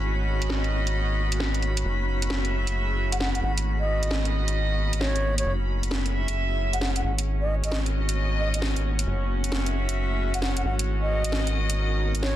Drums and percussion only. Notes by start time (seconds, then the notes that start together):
0.42 closed hi-hat
0.50 snare
0.64 closed hi-hat
0.87 closed hi-hat
1.32 closed hi-hat
1.40 snare
1.54 closed hi-hat
1.62 closed hi-hat
1.77 closed hi-hat
2.22 closed hi-hat
2.30 snare
2.45 closed hi-hat
2.67 closed hi-hat
3.12 closed hi-hat
3.20 snare
3.35 closed hi-hat
3.58 closed hi-hat
4.03 closed hi-hat
4.11 snare
4.25 closed hi-hat
4.48 closed hi-hat
4.93 closed hi-hat
5.01 snare
5.16 closed hi-hat
5.38 closed hi-hat
5.83 closed hi-hat
5.91 snare
6.06 closed hi-hat
6.28 closed hi-hat
6.73 closed hi-hat
6.81 snare
6.96 closed hi-hat
7.18 closed hi-hat
7.64 closed hi-hat
7.72 snare
7.86 closed hi-hat
8.09 closed hi-hat
8.54 closed hi-hat
8.62 snare
8.76 closed hi-hat
8.99 closed hi-hat
9.44 closed hi-hat
9.52 snare
9.66 closed hi-hat
9.89 closed hi-hat
10.34 closed hi-hat
10.42 snare
10.57 closed hi-hat
10.79 closed hi-hat
11.24 closed hi-hat
11.32 snare
11.47 closed hi-hat
11.70 closed hi-hat
12.15 closed hi-hat
12.23 snare